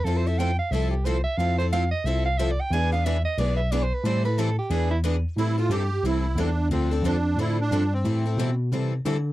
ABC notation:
X:1
M:4/4
L:1/8
Q:"Swing" 1/4=180
K:Am
V:1 name="Soprano saxophone"
(3A c e g f e G c e | f c f ^d e f (3e =d g | ^g f e ^d =d e (3d c B | c B A G ^G E z2 |
z8 | z8 | z8 |]
V:2 name="Accordion"
z8 | z8 | z8 | z8 |
E F G2 E2 D2 | C2 D2 E D2 C- | C3 z4 z |]
V:3 name="Steel-string acoustic guitar"
[F,CEA] [CEA] [F,CEA] z [F,CEA] z [F,CEA] z | [F,CEA] [CEA] [F,CEA] z [F,CEA] z [F,CEA] z | [E,B,D^G] [B,DG] [E,B,DG] z [E,B,DG] z [E,B,DG] z | [E,G,CEA] [CEA] [E,G,CEA] z [E,B,D^G] z [E,B,DG] z |
[E,G,CEA] [CEA] [E,G,CEA] z [E,G,CEA] z [E,G,CEA] z | [D,F,CDA] [CDA] [D,F,CDA] z [D,F,CDA] z [D,F,CDA] z | [E,G,CEA] [CEA] [E,G,CEA] z [E,G,CEA] z [E,G,CEA] z |]
V:4 name="Steel-string acoustic guitar"
[F,CEA] z [F,CEA] z [F,CEA] z [F,CEA] z | [F,CEA] z [F,CEA] z [F,CEA] z [F,CEA] z | [E,B,D^GB] z [E,B,DGB] z [E,B,DGB] z [E,B,DGB] z | [E,G,CEA] z [E,G,CEA] z [E,B,D^GB] z [E,B,DGB] z |
[E,G,CEA] z [E,G,CEA] z [E,G,CEA] z [E,G,CEA] z | [D,F,CDA] z [D,F,CDA] z [D,F,CDA] z [D,F,CDA] z | [E,G,CEA] z [E,G,CEA] z [E,G,CEA] z [E,G,CEA] z |]
V:5 name="Tine electric piano" clef=bass
F,,4 C,,4 | F,,4 C,,4 | E,,4 B,,,4 | A,,4 E,,4 |
A,,2 G,, G,, C,,2 E,,2 | D,,2 F,,2 A,,2 G,,2 | A,,2 B,,2 C, C, D,2 |]